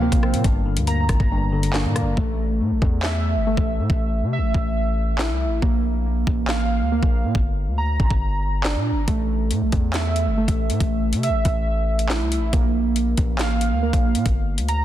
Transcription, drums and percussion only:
0.12 kick, closed hi-hat
0.23 cross-stick
0.34 closed hi-hat
0.44 kick, closed hi-hat
0.77 closed hi-hat
0.87 closed hi-hat
1.09 kick, cross-stick, closed hi-hat
1.20 kick
1.63 closed hi-hat
1.73 snare, clap
1.96 cross-stick, closed hi-hat
2.17 kick
2.82 kick
3.03 snare, clap
3.57 kick
3.90 kick
4.54 kick
5.19 snare, clap
5.62 kick
6.27 kick
6.48 snare, clap
7.03 kick
7.35 kick
8.00 kick
8.11 kick
8.64 snare, clap
9.08 kick, closed hi-hat
9.51 closed hi-hat
9.72 kick, closed hi-hat
9.94 snare, clap, closed hi-hat
10.16 closed hi-hat
10.48 kick, closed hi-hat
10.70 closed hi-hat
10.80 kick, closed hi-hat
11.13 closed hi-hat
11.23 closed hi-hat
11.45 kick, closed hi-hat
11.99 closed hi-hat
12.09 snare, clap
12.32 closed hi-hat
12.53 kick, closed hi-hat
12.96 closed hi-hat
13.17 kick, closed hi-hat
13.39 snare, clap, closed hi-hat
13.61 closed hi-hat
13.93 kick, closed hi-hat
14.15 closed hi-hat
14.26 kick, closed hi-hat
14.58 closed hi-hat
14.68 closed hi-hat

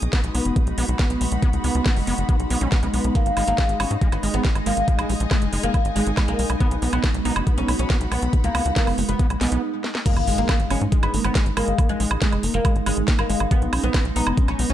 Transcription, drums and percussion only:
0.02 closed hi-hat
0.13 kick, snare, closed hi-hat
0.24 closed hi-hat
0.35 open hi-hat
0.45 closed hi-hat
0.56 kick, closed hi-hat
0.67 closed hi-hat
0.78 open hi-hat
0.89 closed hi-hat
0.99 kick, snare, closed hi-hat
1.10 closed hi-hat
1.21 open hi-hat
1.32 closed hi-hat
1.42 kick, closed hi-hat
1.53 closed hi-hat
1.64 open hi-hat
1.75 closed hi-hat
1.86 kick, snare, closed hi-hat
1.96 open hi-hat
2.07 open hi-hat
2.18 closed hi-hat
2.29 kick, closed hi-hat
2.40 closed hi-hat
2.50 open hi-hat
2.61 closed hi-hat
2.72 kick, snare, closed hi-hat
2.83 closed hi-hat
2.94 open hi-hat
3.04 closed hi-hat
3.15 kick, closed hi-hat
3.26 closed hi-hat
3.37 open hi-hat, high woodblock
3.48 closed hi-hat
3.58 kick, snare, closed hi-hat
3.69 closed hi-hat
3.80 open hi-hat, high woodblock
3.91 closed hi-hat
4.01 kick, closed hi-hat
4.12 closed hi-hat, high woodblock
4.23 open hi-hat
4.34 closed hi-hat
4.45 kick, snare, closed hi-hat
4.55 closed hi-hat, high woodblock
4.66 open hi-hat
4.77 closed hi-hat
4.88 kick, closed hi-hat
4.99 closed hi-hat, high woodblock
5.09 open hi-hat
5.20 closed hi-hat
5.31 kick, snare, closed hi-hat, high woodblock
5.42 closed hi-hat
5.53 open hi-hat
5.63 closed hi-hat
5.74 kick, closed hi-hat, high woodblock
5.85 closed hi-hat
5.96 open hi-hat
6.07 closed hi-hat
6.17 kick, snare, closed hi-hat, high woodblock
6.28 closed hi-hat
6.39 open hi-hat
6.50 closed hi-hat, high woodblock
6.60 kick, closed hi-hat
6.71 closed hi-hat
6.82 open hi-hat
6.93 closed hi-hat, high woodblock
7.04 kick, snare, closed hi-hat
7.14 closed hi-hat
7.25 open hi-hat
7.36 closed hi-hat, high woodblock
7.47 kick, closed hi-hat
7.58 closed hi-hat
7.68 open hi-hat, high woodblock
7.79 closed hi-hat
7.90 kick, snare, closed hi-hat
8.01 closed hi-hat
8.12 open hi-hat, high woodblock
8.22 closed hi-hat
8.33 kick, closed hi-hat
8.44 closed hi-hat
8.55 open hi-hat, high woodblock
8.66 closed hi-hat
8.76 kick, snare, closed hi-hat
8.87 open hi-hat, high woodblock
8.98 open hi-hat
9.09 closed hi-hat
9.19 kick, closed hi-hat
9.30 closed hi-hat, high woodblock
9.41 snare, open hi-hat
9.52 closed hi-hat
9.84 snare
9.95 snare
10.06 kick, closed hi-hat, crash
10.17 closed hi-hat, high woodblock
10.27 open hi-hat
10.49 kick, snare, closed hi-hat, high woodblock
10.60 closed hi-hat
10.71 open hi-hat, high woodblock
10.81 closed hi-hat
10.92 kick, closed hi-hat
11.03 closed hi-hat, high woodblock
11.14 open hi-hat
11.24 high woodblock
11.35 kick, snare, closed hi-hat
11.46 closed hi-hat
11.57 open hi-hat, high woodblock
11.68 closed hi-hat
11.78 kick, closed hi-hat, high woodblock
11.89 closed hi-hat
12.00 open hi-hat
12.11 high woodblock
12.22 kick, snare, closed hi-hat
12.32 closed hi-hat, high woodblock
12.43 open hi-hat
12.54 closed hi-hat
12.65 kick, closed hi-hat, high woodblock
12.76 closed hi-hat
12.86 open hi-hat, high woodblock
12.97 closed hi-hat
13.08 kick, snare, closed hi-hat
13.19 closed hi-hat, high woodblock
13.30 open hi-hat
13.40 high woodblock
13.51 kick, closed hi-hat
13.62 closed hi-hat
13.73 open hi-hat, high woodblock
13.84 closed hi-hat
13.94 kick, snare, closed hi-hat, high woodblock
14.05 closed hi-hat
14.16 open hi-hat
14.27 high woodblock
14.37 kick, closed hi-hat
14.48 closed hi-hat, high woodblock
14.59 open hi-hat
14.70 closed hi-hat

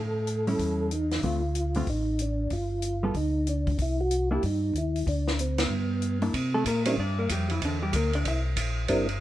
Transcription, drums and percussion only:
0.27 closed hi-hat
0.47 open hi-hat
0.59 kick, open hi-hat
0.91 closed hi-hat
1.11 snare, open hi-hat
1.23 kick, open hi-hat
1.55 closed hi-hat
1.74 open hi-hat
1.87 kick, open hi-hat
2.19 closed hi-hat
2.50 kick, open hi-hat
2.82 closed hi-hat
3.14 kick, open hi-hat
3.47 closed hi-hat
3.67 kick, open hi-hat
3.78 kick, open hi-hat
4.11 closed hi-hat
4.43 kick, open hi-hat
4.75 closed hi-hat
4.96 open hi-hat
5.07 kick, open hi-hat
5.28 snare
5.39 closed hi-hat
5.58 snare, ride
6.02 closed hi-hat
6.22 open hi-hat
6.34 kick, ride
6.66 kick, hi-hat pedal, ride
6.85 ride
6.98 kick
7.29 kick, hi-hat pedal, ride
7.50 ride
7.62 kick, ride
7.93 kick, hi-hat pedal, ride
8.13 ride
8.25 kick, ride
8.57 kick, hi-hat pedal, ride
8.88 kick, ride
9.09 ride

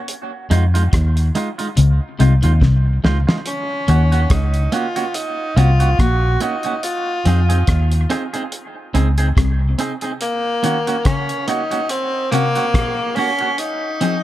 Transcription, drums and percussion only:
0.08 closed hi-hat
0.51 closed hi-hat
0.75 closed hi-hat
0.93 kick, cross-stick, closed hi-hat
1.17 closed hi-hat
1.35 closed hi-hat
1.59 closed hi-hat
1.77 closed hi-hat
2.20 closed hi-hat
2.43 closed hi-hat
2.62 kick, snare
3.05 snare
3.29 snare
3.46 closed hi-hat
3.88 closed hi-hat
4.12 closed hi-hat
4.30 kick, cross-stick, closed hi-hat
4.54 closed hi-hat
4.72 closed hi-hat
4.96 closed hi-hat
5.14 closed hi-hat
5.57 closed hi-hat
5.80 closed hi-hat
5.99 kick, cross-stick, closed hi-hat
6.40 closed hi-hat
6.63 closed hi-hat
6.83 closed hi-hat
7.26 closed hi-hat
7.50 closed hi-hat
7.67 kick, cross-stick, closed hi-hat
7.92 closed hi-hat
8.10 cross-stick, closed hi-hat
8.34 closed hi-hat
8.52 closed hi-hat
8.95 closed hi-hat
9.18 closed hi-hat
9.37 kick, cross-stick, closed hi-hat
9.79 closed hi-hat
10.01 closed hi-hat
10.21 closed hi-hat
10.64 closed hi-hat
10.87 closed hi-hat
11.05 kick, cross-stick, closed hi-hat
11.29 closed hi-hat
11.48 closed hi-hat
11.71 closed hi-hat
11.89 closed hi-hat
12.32 closed hi-hat
12.55 closed hi-hat
12.74 kick, cross-stick, closed hi-hat
13.16 open hi-hat
13.39 closed hi-hat
13.58 closed hi-hat
14.01 closed hi-hat

